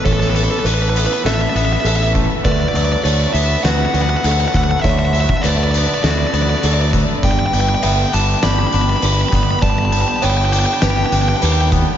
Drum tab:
HH |x-x-x-x-x-x-x-x-|x-x-x-x-x-x-x-x-|x-x-x-x-x-x-x-x-|x-x-x-x-x-x-x-x-|
SD |-o------o-------|--------o-------|--------o-------|--------o-------|
BD |o-------------o-|o-------------o-|o--o----------o-|o-------------o-|

HH |x-x-x-x-x-x-x-x-|
SD |--------o-------|
BD |o-------------o-|